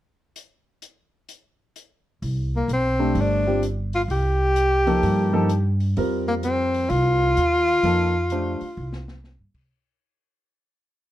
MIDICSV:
0, 0, Header, 1, 6, 480
1, 0, Start_track
1, 0, Tempo, 466926
1, 364, Time_signature, 4, 2, 24, 8
1, 11425, End_track
2, 0, Start_track
2, 0, Title_t, "Grand piano"
2, 0, Program_c, 0, 0
2, 3077, Note_on_c, 0, 62, 53
2, 3079, Note_on_c, 0, 57, 61
2, 3080, Note_on_c, 0, 67, 57
2, 3082, Note_on_c, 0, 72, 59
2, 3528, Note_off_c, 0, 62, 0
2, 3529, Note_off_c, 0, 57, 0
2, 3530, Note_off_c, 0, 67, 0
2, 3530, Note_off_c, 0, 72, 0
2, 3555, Note_on_c, 0, 55, 50
2, 3563, Note_on_c, 0, 65, 48
2, 3568, Note_on_c, 0, 60, 50
2, 3572, Note_on_c, 0, 67, 66
2, 3706, Note_off_c, 0, 55, 0
2, 3710, Note_off_c, 0, 65, 0
2, 3712, Note_off_c, 0, 60, 0
2, 3715, Note_off_c, 0, 67, 0
2, 5003, Note_on_c, 0, 53, 64
2, 5003, Note_on_c, 0, 58, 63
2, 5007, Note_on_c, 0, 63, 53
2, 5012, Note_on_c, 0, 69, 70
2, 5453, Note_off_c, 0, 53, 0
2, 5453, Note_off_c, 0, 58, 0
2, 5455, Note_off_c, 0, 63, 0
2, 5458, Note_off_c, 0, 69, 0
2, 5477, Note_on_c, 0, 53, 71
2, 5480, Note_on_c, 0, 58, 63
2, 5485, Note_on_c, 0, 69, 79
2, 5488, Note_on_c, 0, 63, 61
2, 5629, Note_off_c, 0, 53, 0
2, 5631, Note_off_c, 0, 58, 0
2, 5633, Note_off_c, 0, 69, 0
2, 5635, Note_off_c, 0, 63, 0
2, 6135, Note_on_c, 0, 60, 49
2, 6138, Note_on_c, 0, 55, 57
2, 6142, Note_on_c, 0, 65, 49
2, 6147, Note_on_c, 0, 70, 62
2, 7476, Note_off_c, 0, 60, 0
2, 7478, Note_off_c, 0, 55, 0
2, 7480, Note_off_c, 0, 65, 0
2, 7482, Note_off_c, 0, 70, 0
2, 8062, Note_on_c, 0, 53, 55
2, 8064, Note_on_c, 0, 58, 48
2, 8071, Note_on_c, 0, 63, 46
2, 8073, Note_on_c, 0, 69, 63
2, 8342, Note_off_c, 0, 53, 0
2, 8343, Note_off_c, 0, 58, 0
2, 8346, Note_off_c, 0, 63, 0
2, 8347, Note_off_c, 0, 69, 0
2, 8549, Note_on_c, 0, 62, 47
2, 8549, Note_on_c, 0, 67, 52
2, 8550, Note_on_c, 0, 57, 54
2, 8553, Note_on_c, 0, 72, 61
2, 8825, Note_off_c, 0, 57, 0
2, 8825, Note_off_c, 0, 62, 0
2, 8825, Note_off_c, 0, 67, 0
2, 8827, Note_off_c, 0, 72, 0
2, 11425, End_track
3, 0, Start_track
3, 0, Title_t, "Tenor saxophone"
3, 0, Program_c, 1, 66
3, 2632, Note_on_c, 1, 58, 72
3, 2770, Note_off_c, 1, 58, 0
3, 2808, Note_on_c, 1, 60, 88
3, 3298, Note_on_c, 1, 62, 88
3, 3313, Note_off_c, 1, 60, 0
3, 3752, Note_off_c, 1, 62, 0
3, 4059, Note_on_c, 1, 65, 79
3, 4130, Note_off_c, 1, 65, 0
3, 4228, Note_on_c, 1, 67, 104
3, 5936, Note_off_c, 1, 67, 0
3, 6454, Note_on_c, 1, 58, 80
3, 6526, Note_off_c, 1, 58, 0
3, 6622, Note_on_c, 1, 60, 89
3, 7092, Note_on_c, 1, 65, 109
3, 7107, Note_off_c, 1, 60, 0
3, 9491, Note_off_c, 1, 65, 0
3, 11425, End_track
4, 0, Start_track
4, 0, Title_t, "Upright bass"
4, 0, Program_c, 2, 32
4, 2284, Note_on_c, 2, 36, 64
4, 2731, Note_off_c, 2, 36, 0
4, 2755, Note_on_c, 2, 35, 70
4, 3206, Note_off_c, 2, 35, 0
4, 3236, Note_on_c, 2, 31, 74
4, 4161, Note_off_c, 2, 31, 0
4, 4195, Note_on_c, 2, 36, 67
4, 5122, Note_off_c, 2, 36, 0
4, 5170, Note_on_c, 2, 43, 78
4, 6090, Note_off_c, 2, 43, 0
4, 6137, Note_on_c, 2, 41, 67
4, 7054, Note_off_c, 2, 41, 0
4, 7094, Note_on_c, 2, 36, 76
4, 7540, Note_off_c, 2, 36, 0
4, 7575, Note_on_c, 2, 39, 62
4, 8021, Note_off_c, 2, 39, 0
4, 8052, Note_on_c, 2, 41, 65
4, 8807, Note_off_c, 2, 41, 0
4, 9018, Note_on_c, 2, 36, 76
4, 9613, Note_off_c, 2, 36, 0
4, 9651, Note_on_c, 2, 43, 56
4, 9800, Note_off_c, 2, 43, 0
4, 9809, Note_on_c, 2, 48, 63
4, 9958, Note_off_c, 2, 48, 0
4, 11425, End_track
5, 0, Start_track
5, 0, Title_t, "Muted upright bass strokes"
5, 8851, Note_on_c, 9, 29, 38
5, 8953, Note_off_c, 9, 29, 0
5, 11425, End_track
6, 0, Start_track
6, 0, Title_t, "Drums"
6, 368, Note_on_c, 9, 42, 51
6, 471, Note_off_c, 9, 42, 0
6, 844, Note_on_c, 9, 42, 48
6, 946, Note_off_c, 9, 42, 0
6, 1321, Note_on_c, 9, 42, 47
6, 1424, Note_off_c, 9, 42, 0
6, 1807, Note_on_c, 9, 42, 47
6, 1910, Note_off_c, 9, 42, 0
6, 2286, Note_on_c, 9, 46, 40
6, 2389, Note_off_c, 9, 46, 0
6, 2767, Note_on_c, 9, 42, 45
6, 2870, Note_off_c, 9, 42, 0
6, 3241, Note_on_c, 9, 46, 41
6, 3344, Note_off_c, 9, 46, 0
6, 3729, Note_on_c, 9, 42, 48
6, 3832, Note_off_c, 9, 42, 0
6, 4041, Note_on_c, 9, 46, 33
6, 4144, Note_off_c, 9, 46, 0
6, 4214, Note_on_c, 9, 46, 39
6, 4316, Note_off_c, 9, 46, 0
6, 4687, Note_on_c, 9, 42, 50
6, 4790, Note_off_c, 9, 42, 0
6, 5006, Note_on_c, 9, 46, 32
6, 5108, Note_off_c, 9, 46, 0
6, 5170, Note_on_c, 9, 46, 42
6, 5272, Note_off_c, 9, 46, 0
6, 5648, Note_on_c, 9, 42, 44
6, 5751, Note_off_c, 9, 42, 0
6, 5964, Note_on_c, 9, 46, 30
6, 6067, Note_off_c, 9, 46, 0
6, 6133, Note_on_c, 9, 46, 45
6, 6236, Note_off_c, 9, 46, 0
6, 6610, Note_on_c, 9, 42, 48
6, 6713, Note_off_c, 9, 42, 0
6, 6932, Note_on_c, 9, 46, 35
6, 7035, Note_off_c, 9, 46, 0
6, 7089, Note_on_c, 9, 46, 41
6, 7192, Note_off_c, 9, 46, 0
6, 7574, Note_on_c, 9, 42, 43
6, 7677, Note_off_c, 9, 42, 0
6, 7892, Note_on_c, 9, 46, 32
6, 7995, Note_off_c, 9, 46, 0
6, 8053, Note_on_c, 9, 46, 46
6, 8156, Note_off_c, 9, 46, 0
6, 8531, Note_on_c, 9, 42, 54
6, 8634, Note_off_c, 9, 42, 0
6, 8848, Note_on_c, 9, 46, 35
6, 8951, Note_off_c, 9, 46, 0
6, 9176, Note_on_c, 9, 38, 50
6, 9279, Note_off_c, 9, 38, 0
6, 9335, Note_on_c, 9, 38, 66
6, 9438, Note_off_c, 9, 38, 0
6, 9498, Note_on_c, 9, 38, 53
6, 9601, Note_off_c, 9, 38, 0
6, 9812, Note_on_c, 9, 36, 67
6, 9812, Note_on_c, 9, 49, 64
6, 9915, Note_off_c, 9, 36, 0
6, 9915, Note_off_c, 9, 49, 0
6, 11425, End_track
0, 0, End_of_file